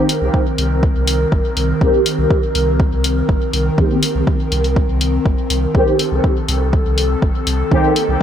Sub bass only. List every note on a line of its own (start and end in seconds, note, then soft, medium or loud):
0.21 0.30 C2 medium
0.58 0.89 C2 loud
0.95 1.26 C2 loud
1.32 1.40 G1 loud
1.57 1.73 C2 medium
1.81 1.90 C2 medium
2.19 2.26 C2 medium
2.55 2.85 C2 loud
2.92 3.22 C2 loud
3.29 3.37 G1 loud
3.53 3.70 C2 medium
3.78 3.86 C2 loud
4.15 4.23 C2 medium
4.52 4.82 C2 loud
4.89 5.19 C2 medium
5.25 5.34 G1 loud
5.50 5.67 C2 medium
5.75 5.83 C2 medium
6.12 6.20 C2 medium
6.49 6.79 C2 loud
6.86 7.16 C2 loud
7.22 7.31 G1 loud
7.47 7.63 C2 medium
7.72 7.80 C2 loud
8.08 8.17 C2 medium